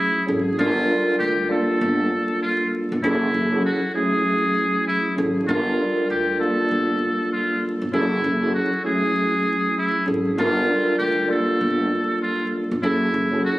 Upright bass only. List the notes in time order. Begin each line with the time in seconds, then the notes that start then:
0.28 G#1
0.59 G1
1.20 D2
1.81 G1
2.92 G1
3.04 F#1
3.34 F#1
5.18 G#1
5.49 G1
6.10 D2
6.71 G1
7.82 G1
7.93 F#1
8.24 F#1
10.08 G#1
10.38 G1
11.00 D2
11.61 G1
12.71 G1
12.83 F#1
13.14 F#1